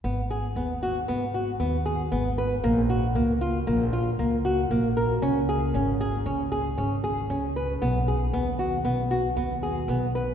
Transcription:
<<
  \new Staff \with { instrumentName = "Nylon-string guitar" } { \time 5/4 \key gis \dorian \tempo 4 = 116 b8 gis'8 b8 fis'8 b8 fis'8 b8 gis'8 b8 b'8 | ais8 fis'8 ais8 eis'8 ais8 eis'8 ais8 fis'8 ais8 ais'8 | cis'8 gis'8 cis'8 gis'8 cis'8 gis'8 cis'8 gis'8 cis'8 b'8 | b8 gis'8 b8 fis'8 b8 fis'8 b8 gis'8 b8 b'8 | }
  \new Staff \with { instrumentName = "Upright bass" } { \clef bass \time 5/4 \key gis \dorian gis,,4 dis,4 gis,,4 dis,4 gis,,4 | ais,,4 cis,4 ais,,4 cis,4 ais,,4 | cis,4 gis,,4 cis,4 gis,,4 cis,4 | b,,4 dis,4 b,,4 dis,4 b,,4 | }
>>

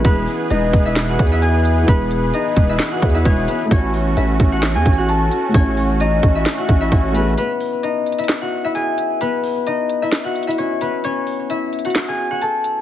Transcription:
<<
  \new Staff \with { instrumentName = "Harp" } { \time 4/4 \key e \major \tempo 4 = 131 <b b'>4 <dis' dis''>8. <e' e''>8 <fis' fis''>8 <e' e''>16 <gis' gis''>4 | <b b'>4 <dis' dis''>8. <e' e''>8 <fis' fis''>8 <e' e''>16 <cis' cis''>8 <b b'>8 | <cis' cis''>4 <e' e''>8. <fis' fis''>8 <gis' gis''>8 <fis' fis''>16 <a' a''>4 | <cis' cis''>4 <dis' dis''>8. <e' e''>8 <fis' fis''>8 <e' e''>16 <cis' cis''>8 <b b'>8 |
<b b'>4 <dis' dis''>8. <e' e''>8 <fis' fis''>8 <e' e''>16 <gis' gis''>4 | <b b'>4 <dis' dis''>8. <e' e''>8 <fis' fis''>8 <e' e''>16 <cis' cis''>8 <b b'>8 | <cis' cis''>4 <e' e''>8. <fis' fis''>8 <gis' gis''>8 <fis' fis''>16 <a' a''>4 | }
  \new Staff \with { instrumentName = "Grand piano" } { \time 4/4 \key e \major <e b gis' b'>1 | <e b gis' b'>1 | <a e' fis' cis''>1 | <e a fis' cis''>2.~ <e a fis' cis''>8 <a e' fis' gis'>8 |
r1 | r1 | r1 | }
  \new Staff \with { instrumentName = "Accordion" } { \time 4/4 \key e \major <e b gis' b'>1~ | <e b gis' b'>1 | <a cis' fis'>1~ | <a cis' fis'>1 |
r1 | r1 | r1 | }
  \new Staff \with { instrumentName = "808-style bass" } { \clef bass \time 4/4 \key e \major e,,8 r8 e,,8 e,,4 e,4. | e,,4 r8 e,,8 r8 e,8 e,,8 r8 | a,,4 a,,8 a,,8. e,16 a,,4 r8 | a,,4. a,,8 r8 a,,8 a,,4 |
r1 | r1 | r1 | }
  \new DrumStaff \with { instrumentName = "Drums" } \drummode { \time 4/4 <hh bd>8 hho8 hh8 <hh bd>8 \tuplet 3/2 { <hc hh sn>16 r16 r16 <hh bd>16 hh16 hh16 } hh8 hh8 | <hh bd>8 hh8 hh8 <hh bd>8 \tuplet 3/2 { <hc hh sn>16 r16 r16 <hh bd>16 hh16 hh16 } <hh bd>8 hh8 | <hh bd>8 hho8 hh8 <hh bd>8 \tuplet 3/2 { <hc hh sn>16 r16 r16 <hh bd>16 hh16 hh16 } hh8 hh8 | <hh bd>8 hho8 hh8 <hh bd>8 <hc hh sn>8 <hh bd>8 <hh bd>8 hh8 |
hh8 hho8 hh8 hh32 hh32 hh32 hh32 <hc hh sn>4 hh8 hh8 | hh8 hho8 hh8 hh8 \tuplet 3/2 { <hc hh sn>16 r16 r16 hh16 hh16 hh16 } hh8 hh8 | hh8 hho8 hh8 hh32 hh32 hh32 hh32 <hc hh sn>4 hh8 hh8 | }
>>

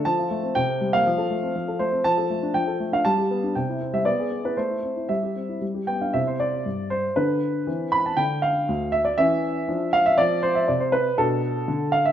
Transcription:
<<
  \new Staff \with { instrumentName = "Grand piano" } { \time 2/4 \key f \major \tempo 4 = 119 << { a''4 g''8. f''16~ | f''4. c''8 | \key c \major a''4 g''8. f''16 | a''4 g''8. e''16 |
d''8. b'16 c''4 | e''4 r8 g''16 f''16 | e''16 c''16 d''4 c''8 | b'4. b''16 a''16 |
g''8 f''4 e''16 d''16 | fes''4. f''16 e''16 | \key f \lydian d''8 c''16 e''16 d''16 c''16 b'8 | a'4. f''16 e''16 | } \\ { r2 | r2 | r2 | r2 |
r2 | r2 | e'2 | d'4 c'4 |
d'2 | des'4 d'4 | c'2 | d'2 | } >> }
  \new Staff \with { instrumentName = "Grand piano" } { \time 2/4 \key f \major f16 f'16 a16 c'16 c16 c'16 g16 bes16 | f16 a'16 a16 c'16 f16 a'16 a16 c'16 | \key c \major f16 a'16 a16 d'16 f16 a'16 a16 d'16 | g16 g'16 b16 d'16 c16 e'16 c'16 g16 |
b16 gis'16 b16 e'16 a16 e'16 c'16 e'16 | g16 g'16 c'16 e'16 g16 g'16 b16 d'16 | c4 g,4 | d4 e4 |
d4 d,4 | fes4 f4 | \key f \lydian f4 c4 | b,4 d4 | }
>>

